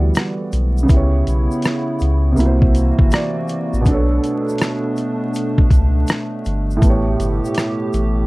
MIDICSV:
0, 0, Header, 1, 5, 480
1, 0, Start_track
1, 0, Tempo, 740741
1, 579, Time_signature, 4, 2, 24, 8
1, 5358, End_track
2, 0, Start_track
2, 0, Title_t, "Upright piano"
2, 0, Program_c, 0, 0
2, 0, Control_c, 0, 64, 127
2, 0, Note_on_c, 0, 52, 54
2, 0, Note_on_c, 0, 59, 47
2, 0, Note_on_c, 0, 66, 53
2, 0, Note_on_c, 0, 67, 49
2, 0, Note_on_c, 0, 74, 58
2, 537, Note_on_c, 0, 49, 76
2, 550, Note_off_c, 0, 59, 0
2, 560, Note_on_c, 0, 59, 62
2, 571, Note_off_c, 0, 52, 0
2, 581, Note_off_c, 0, 66, 0
2, 581, Note_on_c, 0, 64, 64
2, 588, Note_off_c, 0, 67, 0
2, 588, Control_c, 0, 64, 0
2, 592, Note_off_c, 0, 74, 0
2, 603, Note_on_c, 0, 67, 61
2, 623, Note_on_c, 0, 73, 76
2, 692, Control_c, 0, 64, 127
2, 1499, Note_off_c, 0, 49, 0
2, 1505, Note_on_c, 0, 48, 67
2, 1510, Note_off_c, 0, 59, 0
2, 1521, Note_off_c, 0, 64, 0
2, 1528, Note_on_c, 0, 58, 69
2, 1532, Note_off_c, 0, 67, 0
2, 1543, Note_off_c, 0, 73, 0
2, 1547, Control_c, 0, 64, 0
2, 1547, Note_on_c, 0, 64, 63
2, 1570, Note_on_c, 0, 66, 57
2, 1591, Note_on_c, 0, 72, 73
2, 1646, Control_c, 0, 64, 127
2, 2026, Note_on_c, 0, 74, 77
2, 2462, Note_off_c, 0, 48, 0
2, 2467, Note_on_c, 0, 47, 71
2, 2475, Note_off_c, 0, 58, 0
2, 2477, Note_off_c, 0, 74, 0
2, 2484, Note_off_c, 0, 64, 0
2, 2488, Note_on_c, 0, 59, 63
2, 2496, Note_off_c, 0, 66, 0
2, 2507, Note_off_c, 0, 72, 0
2, 2507, Control_c, 0, 64, 0
2, 2512, Note_on_c, 0, 62, 72
2, 2533, Note_on_c, 0, 69, 62
2, 2552, Note_on_c, 0, 73, 70
2, 2620, Control_c, 0, 64, 127
2, 4377, Note_off_c, 0, 47, 0
2, 4384, Note_on_c, 0, 45, 68
2, 4388, Note_off_c, 0, 59, 0
2, 4400, Note_off_c, 0, 62, 0
2, 4406, Note_on_c, 0, 57, 62
2, 4410, Note_off_c, 0, 69, 0
2, 4420, Note_off_c, 0, 73, 0
2, 4428, Note_on_c, 0, 59, 61
2, 4429, Control_c, 0, 64, 0
2, 4449, Note_on_c, 0, 67, 63
2, 4469, Note_on_c, 0, 73, 71
2, 4531, Control_c, 0, 64, 127
2, 5358, Note_off_c, 0, 45, 0
2, 5358, Note_off_c, 0, 57, 0
2, 5358, Note_off_c, 0, 59, 0
2, 5358, Note_off_c, 0, 67, 0
2, 5358, Note_off_c, 0, 73, 0
2, 5358, End_track
3, 0, Start_track
3, 0, Title_t, "Analog synth pad"
3, 0, Program_c, 1, 89
3, 0, Note_on_c, 1, 50, 75
3, 0, Note_on_c, 1, 55, 76
3, 0, Note_on_c, 1, 78, 86
3, 562, Note_off_c, 1, 78, 0
3, 563, Note_off_c, 1, 50, 0
3, 563, Note_off_c, 1, 55, 0
3, 581, Note_on_c, 1, 49, 77
3, 581, Note_on_c, 1, 64, 84
3, 583, Note_on_c, 1, 59, 65
3, 1531, Note_off_c, 1, 49, 0
3, 1531, Note_off_c, 1, 64, 0
3, 1532, Note_off_c, 1, 59, 0
3, 1540, Note_on_c, 1, 66, 81
3, 1542, Note_on_c, 1, 52, 80
3, 1542, Note_on_c, 1, 58, 76
3, 2490, Note_off_c, 1, 66, 0
3, 2491, Note_off_c, 1, 52, 0
3, 2491, Note_off_c, 1, 58, 0
3, 2503, Note_on_c, 1, 57, 69
3, 2505, Note_on_c, 1, 62, 94
3, 2506, Note_on_c, 1, 47, 75
3, 4403, Note_off_c, 1, 62, 0
3, 4426, Note_on_c, 1, 67, 87
3, 5358, Note_off_c, 1, 47, 0
3, 5358, Note_off_c, 1, 57, 0
3, 5358, Note_off_c, 1, 67, 0
3, 5358, End_track
4, 0, Start_track
4, 0, Title_t, "Sub bass"
4, 0, Program_c, 2, 38
4, 0, Note_on_c, 2, 38, 83
4, 74, Note_off_c, 2, 38, 0
4, 341, Note_on_c, 2, 35, 90
4, 556, Note_off_c, 2, 35, 0
4, 578, Note_on_c, 2, 37, 106
4, 794, Note_off_c, 2, 37, 0
4, 825, Note_on_c, 2, 35, 95
4, 960, Note_off_c, 2, 35, 0
4, 1304, Note_on_c, 2, 37, 83
4, 1517, Note_off_c, 2, 37, 0
4, 1539, Note_on_c, 2, 36, 104
4, 1893, Note_off_c, 2, 36, 0
4, 1936, Note_on_c, 2, 31, 97
4, 2012, Note_off_c, 2, 31, 0
4, 2417, Note_on_c, 2, 33, 81
4, 2493, Note_off_c, 2, 33, 0
4, 2500, Note_on_c, 2, 35, 106
4, 2715, Note_off_c, 2, 35, 0
4, 3697, Note_on_c, 2, 37, 88
4, 3913, Note_off_c, 2, 37, 0
4, 4186, Note_on_c, 2, 31, 101
4, 4398, Note_off_c, 2, 31, 0
4, 4419, Note_on_c, 2, 33, 106
4, 4635, Note_off_c, 2, 33, 0
4, 4661, Note_on_c, 2, 31, 93
4, 4798, Note_off_c, 2, 31, 0
4, 5143, Note_on_c, 2, 33, 90
4, 5358, Note_off_c, 2, 33, 0
4, 5358, End_track
5, 0, Start_track
5, 0, Title_t, "Drums"
5, 96, Note_on_c, 9, 82, 72
5, 98, Note_on_c, 9, 42, 83
5, 111, Note_on_c, 9, 37, 122
5, 160, Note_off_c, 9, 82, 0
5, 163, Note_off_c, 9, 42, 0
5, 176, Note_off_c, 9, 37, 0
5, 339, Note_on_c, 9, 82, 42
5, 343, Note_on_c, 9, 42, 68
5, 404, Note_off_c, 9, 82, 0
5, 408, Note_off_c, 9, 42, 0
5, 502, Note_on_c, 9, 82, 49
5, 567, Note_off_c, 9, 82, 0
5, 576, Note_on_c, 9, 82, 64
5, 579, Note_on_c, 9, 36, 107
5, 585, Note_on_c, 9, 42, 81
5, 641, Note_off_c, 9, 82, 0
5, 643, Note_off_c, 9, 36, 0
5, 649, Note_off_c, 9, 42, 0
5, 823, Note_on_c, 9, 42, 66
5, 827, Note_on_c, 9, 82, 46
5, 888, Note_off_c, 9, 42, 0
5, 892, Note_off_c, 9, 82, 0
5, 981, Note_on_c, 9, 82, 53
5, 1046, Note_off_c, 9, 82, 0
5, 1052, Note_on_c, 9, 42, 74
5, 1061, Note_on_c, 9, 82, 71
5, 1073, Note_on_c, 9, 37, 102
5, 1117, Note_off_c, 9, 42, 0
5, 1126, Note_off_c, 9, 82, 0
5, 1137, Note_off_c, 9, 37, 0
5, 1293, Note_on_c, 9, 82, 39
5, 1308, Note_on_c, 9, 42, 47
5, 1358, Note_off_c, 9, 82, 0
5, 1373, Note_off_c, 9, 42, 0
5, 1535, Note_on_c, 9, 82, 67
5, 1556, Note_on_c, 9, 42, 78
5, 1600, Note_off_c, 9, 82, 0
5, 1621, Note_off_c, 9, 42, 0
5, 1697, Note_on_c, 9, 36, 90
5, 1762, Note_off_c, 9, 36, 0
5, 1780, Note_on_c, 9, 42, 68
5, 1790, Note_on_c, 9, 82, 49
5, 1845, Note_off_c, 9, 42, 0
5, 1855, Note_off_c, 9, 82, 0
5, 1935, Note_on_c, 9, 36, 91
5, 2000, Note_off_c, 9, 36, 0
5, 2017, Note_on_c, 9, 82, 68
5, 2021, Note_on_c, 9, 42, 82
5, 2033, Note_on_c, 9, 37, 118
5, 2081, Note_off_c, 9, 82, 0
5, 2085, Note_off_c, 9, 42, 0
5, 2098, Note_off_c, 9, 37, 0
5, 2257, Note_on_c, 9, 82, 43
5, 2264, Note_on_c, 9, 42, 66
5, 2322, Note_off_c, 9, 82, 0
5, 2329, Note_off_c, 9, 42, 0
5, 2422, Note_on_c, 9, 82, 49
5, 2487, Note_off_c, 9, 82, 0
5, 2499, Note_on_c, 9, 82, 63
5, 2500, Note_on_c, 9, 36, 99
5, 2504, Note_on_c, 9, 42, 78
5, 2564, Note_off_c, 9, 82, 0
5, 2565, Note_off_c, 9, 36, 0
5, 2569, Note_off_c, 9, 42, 0
5, 2745, Note_on_c, 9, 42, 61
5, 2750, Note_on_c, 9, 82, 48
5, 2810, Note_off_c, 9, 42, 0
5, 2815, Note_off_c, 9, 82, 0
5, 2907, Note_on_c, 9, 82, 54
5, 2970, Note_on_c, 9, 42, 75
5, 2972, Note_off_c, 9, 82, 0
5, 2987, Note_on_c, 9, 82, 72
5, 2990, Note_on_c, 9, 37, 109
5, 3034, Note_off_c, 9, 42, 0
5, 3051, Note_off_c, 9, 82, 0
5, 3055, Note_off_c, 9, 37, 0
5, 3218, Note_on_c, 9, 82, 37
5, 3226, Note_on_c, 9, 42, 47
5, 3283, Note_off_c, 9, 82, 0
5, 3291, Note_off_c, 9, 42, 0
5, 3461, Note_on_c, 9, 82, 64
5, 3473, Note_on_c, 9, 42, 73
5, 3526, Note_off_c, 9, 82, 0
5, 3538, Note_off_c, 9, 42, 0
5, 3616, Note_on_c, 9, 36, 92
5, 3681, Note_off_c, 9, 36, 0
5, 3697, Note_on_c, 9, 36, 106
5, 3700, Note_on_c, 9, 42, 68
5, 3710, Note_on_c, 9, 82, 48
5, 3762, Note_off_c, 9, 36, 0
5, 3764, Note_off_c, 9, 42, 0
5, 3775, Note_off_c, 9, 82, 0
5, 3936, Note_on_c, 9, 82, 73
5, 3940, Note_on_c, 9, 42, 88
5, 3952, Note_on_c, 9, 37, 127
5, 4001, Note_off_c, 9, 82, 0
5, 4004, Note_off_c, 9, 42, 0
5, 4017, Note_off_c, 9, 37, 0
5, 4181, Note_on_c, 9, 82, 42
5, 4187, Note_on_c, 9, 42, 62
5, 4246, Note_off_c, 9, 82, 0
5, 4252, Note_off_c, 9, 42, 0
5, 4345, Note_on_c, 9, 82, 48
5, 4410, Note_off_c, 9, 82, 0
5, 4419, Note_on_c, 9, 36, 109
5, 4423, Note_on_c, 9, 82, 64
5, 4424, Note_on_c, 9, 42, 79
5, 4484, Note_off_c, 9, 36, 0
5, 4487, Note_off_c, 9, 82, 0
5, 4489, Note_off_c, 9, 42, 0
5, 4665, Note_on_c, 9, 42, 67
5, 4670, Note_on_c, 9, 82, 49
5, 4730, Note_off_c, 9, 42, 0
5, 4735, Note_off_c, 9, 82, 0
5, 4828, Note_on_c, 9, 82, 52
5, 4890, Note_on_c, 9, 42, 78
5, 4893, Note_off_c, 9, 82, 0
5, 4908, Note_on_c, 9, 82, 74
5, 4910, Note_on_c, 9, 37, 99
5, 4954, Note_off_c, 9, 42, 0
5, 4973, Note_off_c, 9, 82, 0
5, 4975, Note_off_c, 9, 37, 0
5, 5140, Note_on_c, 9, 82, 38
5, 5146, Note_on_c, 9, 42, 46
5, 5205, Note_off_c, 9, 82, 0
5, 5211, Note_off_c, 9, 42, 0
5, 5358, End_track
0, 0, End_of_file